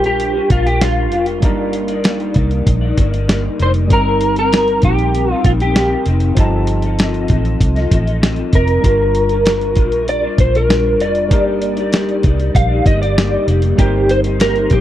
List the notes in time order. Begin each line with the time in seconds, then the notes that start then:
Already playing: A#1 G3 D4 F4 A#4
0.04 G4, closed hi-hat
0.20 closed hi-hat
0.33 D4 F4 A#4
0.49 A#1 G3 D4 F4 A#4, kick, closed hi-hat
0.64 D4 F4 G4 A#4, closed hi-hat
0.80 G3 D4 F4 A#4, snare, closed hi-hat
1.11 F1 G3 D4 F4 A#4, closed hi-hat
1.26 closed hi-hat
1.40 G1 F#3 G3 A#3 D4 D#4 A#4, kick, closed hi-hat
1.45 G3 A#4 D5
1.73 closed hi-hat
1.88 A#4 D5, closed hi-hat
1.92 D#4
2.04 G3 A#3 D#4 A#4 D5, snare, closed hi-hat
2.20 closed hi-hat
2.34 C2 A#3 D#4 A#4, kick, closed hi-hat
2.39 D5
2.51 closed hi-hat
2.67 A#1, kick, closed hi-hat
2.81 D#4 A#4 D5
2.97 G1 A#3 D#4 A#4 D5, kick, closed hi-hat
3.12 D#4 A#4 D5, closed hi-hat
3.28 G3 A#3 D#4 A#4 D5, snare, closed hi-hat
3.59 F1 A#3 D#4 A#4 C5 D5, closed hi-hat
3.74 closed hi-hat
3.87 G1 G3 C4 D4, kick, closed hi-hat
3.92 C4 D#4 A#4
3.97 D#4
4.21 closed hi-hat
4.36 C4 D#4 A#4, closed hi-hat
4.51 G3 C4 D#4 A#4, snare, closed hi-hat
4.68 closed hi-hat
4.82 A#1 G3 C4 D#4 G4, kick, closed hi-hat
4.86 A#4
4.99 closed hi-hat
5.15 closed hi-hat
5.28 C4 D#4 A#4
5.33 F4
5.44 A#1 G3 C4 D#4 F4 A#4, kick, closed hi-hat
5.60 C4 D#4 G4 A#4, closed hi-hat
5.75 G3 C4 D#4 A#4, snare, closed hi-hat
6.05 F1 G3 C4 D#4 A#4, closed hi-hat
6.20 closed hi-hat
6.35 G1 F3 G3 C4 D#4 F4 A4, kick, closed hi-hat
6.39 D#5 A5
6.67 closed hi-hat
6.82 A4 D#5, closed hi-hat
6.87 F4
6.99 G3 C4 F4 A4 D#5, snare, closed hi-hat
7.14 closed hi-hat
7.28 A1 C4 F4 A4, kick, closed hi-hat
7.33 D#5
7.45 closed hi-hat
7.61 C2, kick, closed hi-hat
7.76 F4 A4 D#5, snare, closed hi-hat
7.91 A1 C4 F4 A4 D#5, kick, closed hi-hat
8.06 F4 A4 D#5, closed hi-hat
8.21 G3 C4 F4 A4 D#5, snare, closed hi-hat
8.36 closed hi-hat
8.52 F1 C4 F4 A#4 D#5, kick, closed hi-hat
8.68 closed hi-hat
8.81 G1 G3 D4 F4, kick, closed hi-hat
8.86 A#4
9.15 closed hi-hat
9.29 D4 F4 A#4, closed hi-hat
9.45 G3 D4 F4 A#4, snare, closed hi-hat
9.61 closed hi-hat
9.76 A#1 G3 D4 F4 A#4, kick, closed hi-hat
9.92 closed hi-hat
10.08 D5, closed hi-hat
10.22 D4 F4 A#4
10.38 A#1 G3 D4 F4 A#4 C5, kick, closed hi-hat
10.53 D4 F4 A#4, closed hi-hat
10.68 G3 D4 F4 A#4, snare, closed hi-hat
10.99 F1 G3 D4 F4 D5, closed hi-hat
11.03 A#4
11.15 closed hi-hat
11.28 G1 G3 A#3 D4 D#4 G4, kick, closed hi-hat
11.32 A#4 D5
11.62 closed hi-hat
11.76 D#4 G4 D5, closed hi-hat
11.91 G3 A#3 D#4 G4 D5, snare, closed hi-hat
12.09 closed hi-hat
12.23 C2 A#3 D#4 G4 D5, kick, closed hi-hat
12.37 D#4 G4 D5, closed hi-hat
12.55 A#1 F5, kick, closed hi-hat
12.69 D#4 G4 D5
12.85 G1 A#3 D#4 G4 D5 D#5, kick, closed hi-hat
13.00 D#4 G4 D5, closed hi-hat
13.15 G3 A#3 D#4 G4 D5, snare, closed hi-hat
13.46 F1 A#3 D#4 G4 D5, closed hi-hat
13.62 closed hi-hat
13.76 G1 G3 A#3 C4 D#4 G4 C5, kick, closed hi-hat
13.81 A#4
14.09 C5, closed hi-hat
14.23 D#4 G4 C5, closed hi-hat
14.39 G3 A#3 D#4 G4 A#4 C5, snare, closed hi-hat
14.56 closed hi-hat
14.69 A#1 A#3 D#4 G4 C5, kick, closed hi-hat